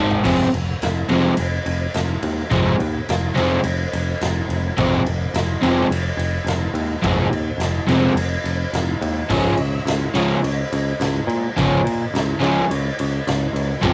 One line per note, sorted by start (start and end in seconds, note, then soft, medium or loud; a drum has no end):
0.00 0.24 G#1 medium
0.00 0.23 G#2 loud
0.00 0.24 D#3 medium
0.00 0.24 G#3 loud
0.11 floor tom loud
0.23 0.44 F1 medium
0.23 0.47 F2 loud
0.23 0.47 C3 loud
0.23 0.47 F3 medium
0.23 0.47 G#3 loud
0.23 0.48 C4 loud
0.23 kick loud
0.23 crash loud
0.53 0.72 F1 medium
0.53 ride medium
0.82 1.02 F1 loud
0.82 snare loud
0.82 ride loud
1.09 1.29 F1 medium
1.09 1.32 F2 medium
1.09 1.32 C3 medium
1.09 1.33 F3 loud
1.09 1.33 G#3 medium
1.09 1.33 C4 medium
1.09 ride medium
1.37 1.57 F1 medium
1.37 ride loud
1.66 1.85 F1 medium
1.66 ride medium
1.94 2.14 F1 medium
1.94 snare loud
1.94 ride medium
2.23 2.42 D#2 medium
2.23 ride medium
2.50 2.71 F1 medium
2.50 2.73 F2 medium
2.50 2.74 C3 loud
2.50 2.74 F3 loud
2.50 2.74 G#3 loud
2.50 2.74 C4 loud
2.50 kick loud
2.50 ride medium
2.79 2.99 D#2 medium
2.79 ride medium
3.09 3.28 F1 loud
3.09 snare loud
3.09 ride medium
3.34 3.57 F1 medium
3.34 3.58 F2 loud
3.34 3.58 C3 loud
3.34 3.59 F3 medium
3.34 3.59 G#3 loud
3.34 3.59 C4 loud
3.34 ride medium
3.64 3.84 F1 medium
3.64 ride loud
3.93 4.13 F1 medium
3.93 ride medium
4.21 4.41 F1 medium
4.21 snare loud
4.21 ride loud
4.49 4.69 F1 medium
4.49 ride medium
4.77 4.97 F1 loud
4.77 5.01 F2 medium
4.77 5.00 C3 loud
4.77 5.01 F3 loud
4.77 5.01 G#3 loud
4.77 5.02 C4 loud
4.77 kick loud
4.77 ride loud
5.05 5.25 F1 medium
5.05 ride medium
5.34 5.54 F1 loud
5.34 snare loud
5.34 ride loud
5.61 5.82 F1 medium
5.61 5.85 F2 loud
5.61 5.85 C3 medium
5.61 5.86 F3 loud
5.61 5.86 G#3 loud
5.61 5.86 C4 loud
5.61 ride medium
5.89 6.09 F1 medium
5.89 ride loud
6.17 6.37 F1 medium
6.17 ride medium
6.45 6.65 F1 medium
6.45 snare loud
6.45 ride medium
6.74 6.94 D#2 medium
6.74 ride medium
7.03 7.24 F1 loud
7.03 7.26 F2 loud
7.03 7.27 C3 loud
7.03 7.27 F3 loud
7.03 7.27 G#3 loud
7.03 7.28 C4 loud
7.03 kick loud
7.03 ride medium
7.29 7.50 D#2 loud
7.29 ride medium
7.58 7.78 F1 loud
7.58 snare loud
7.58 ride loud
7.87 8.07 F1 medium
7.87 8.11 F2 loud
7.87 8.11 C3 medium
7.87 8.12 F3 loud
7.87 8.12 G#3 medium
7.87 8.12 C4 loud
7.87 ride medium
8.15 8.35 F1 loud
8.15 ride loud
8.44 8.64 F1 medium
8.44 ride medium
8.73 8.93 F1 medium
8.73 snare loud
8.73 ride loud
9.01 9.21 D#2 medium
9.01 ride medium
9.29 9.50 C#2 medium
9.29 9.53 C#3 loud
9.29 9.53 F3 loud
9.29 9.54 G#3 loud
9.29 9.54 C#4 loud
9.29 kick loud
9.29 crash loud
9.57 9.78 C#2 medium
9.57 ride medium
9.85 10.06 C#2 medium
9.85 snare loud
9.85 ride loud
10.14 10.34 C#2 medium
10.14 10.38 C#3 loud
10.14 10.38 F3 loud
10.14 10.39 G#3 medium
10.14 10.39 C#4 loud
10.14 ride medium
10.42 10.62 C#2 medium
10.42 ride loud
10.72 10.92 C#2 medium
10.72 ride medium
11.00 11.19 C#2 medium
11.00 snare loud
11.00 ride medium
11.27 11.47 A#2 medium
11.27 ride medium
11.57 11.77 C#2 medium
11.57 11.79 C#3 loud
11.57 11.80 F3 loud
11.57 11.80 G#3 medium
11.57 11.80 C#4 loud
11.57 kick loud
11.57 ride medium
11.85 12.04 A#2 medium
11.85 ride medium
12.14 12.33 C#2 medium
12.14 snare loud
12.14 ride medium
12.40 12.61 C#2 medium
12.40 12.63 C#3 loud
12.40 12.64 F3 loud
12.40 12.64 G#3 loud
12.40 12.65 C#4 loud
12.40 ride medium
12.70 12.89 C#2 medium
12.70 ride loud
12.99 13.19 C#2 medium
12.99 ride medium
13.27 13.46 C#2 medium
13.27 snare loud
13.27 ride medium
13.53 13.73 C#2 medium
13.53 ride medium
13.81 13.93 F1 loud
13.81 13.93 F2 loud
13.81 13.93 C3 loud
13.81 13.93 F3 loud
13.81 13.93 G#3 loud
13.81 13.93 C4 loud
13.81 kick loud
13.81 ride loud